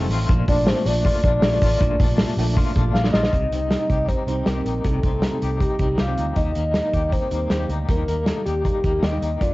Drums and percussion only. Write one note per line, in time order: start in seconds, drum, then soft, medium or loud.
0.10 hi-hat pedal medium
0.10 open hi-hat medium
0.29 kick loud
0.29 hi-hat pedal medium
0.29 open hi-hat medium
0.48 kick loud
0.48 hi-hat pedal medium
0.48 open hi-hat medium
0.67 snare loud
0.67 hi-hat pedal medium
0.67 open hi-hat medium
0.85 hi-hat pedal medium
0.85 open hi-hat medium
1.04 kick medium
1.04 hi-hat pedal medium
1.04 open hi-hat medium
1.23 kick medium
1.23 hi-hat pedal medium
1.23 open hi-hat medium
1.42 snare loud
1.42 hi-hat pedal medium
1.42 open hi-hat medium
1.61 kick medium
1.61 hi-hat pedal medium
1.61 open hi-hat medium
1.80 kick loud
1.80 hi-hat pedal medium
1.80 open hi-hat loud
2.00 kick loud
2.00 hi-hat pedal medium
2.00 open hi-hat medium
2.18 snare loud
2.18 hi-hat pedal medium
2.18 open hi-hat loud
2.38 hi-hat pedal medium
2.38 open hi-hat medium
2.56 kick medium
2.56 hi-hat pedal medium
2.56 open hi-hat medium
2.76 kick medium
2.76 hi-hat pedal medium
2.76 open hi-hat medium
2.95 snare medium
3.04 snare medium
3.14 snare medium
3.23 snare loud
3.33 kick medium
3.33 closed hi-hat medium
3.52 closed hi-hat medium
3.71 snare loud
3.71 closed hi-hat medium
3.90 kick medium
3.90 closed hi-hat medium
4.09 kick medium
4.09 closed hi-hat medium
4.28 closed hi-hat medium
4.46 snare medium
4.46 closed hi-hat medium
4.66 closed hi-hat medium
4.84 kick medium
4.84 closed hi-hat medium
5.03 kick medium
5.03 closed hi-hat medium
5.22 snare medium
5.22 closed hi-hat medium
5.42 closed hi-hat medium
5.60 kick medium
5.60 closed hi-hat medium
5.79 kick medium
5.79 closed hi-hat medium
5.98 snare medium
5.98 closed hi-hat medium
6.17 closed hi-hat medium
6.36 kick medium
6.36 closed hi-hat medium
6.55 closed hi-hat medium
6.74 snare loud
6.74 closed hi-hat medium
6.93 kick medium
6.93 closed hi-hat medium
7.12 kick medium
7.12 closed hi-hat medium
7.31 closed hi-hat medium
7.50 snare medium
7.50 closed hi-hat medium
7.69 closed hi-hat medium
7.89 kick loud
7.89 closed hi-hat medium
8.08 closed hi-hat medium
8.26 snare loud
8.26 closed hi-hat medium
8.46 closed hi-hat medium
8.65 kick medium
8.65 closed hi-hat medium
8.84 kick medium
8.84 closed hi-hat medium
9.03 snare medium
9.03 closed hi-hat medium
9.22 closed hi-hat medium
9.41 kick medium
9.41 closed hi-hat medium